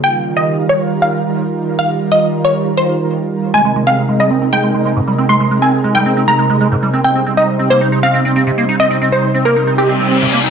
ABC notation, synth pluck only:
X:1
M:4/4
L:1/16
Q:1/4=137
K:Ab
V:1 name="Synth pluck"
g3 e3 d3 f6 z | f3 e3 d3 c6 z | a3 f3 e3 g6 z | c'3 a3 g3 b6 z |
g3 e3 c3 f6 z | e3 c3 B3 G6 z |]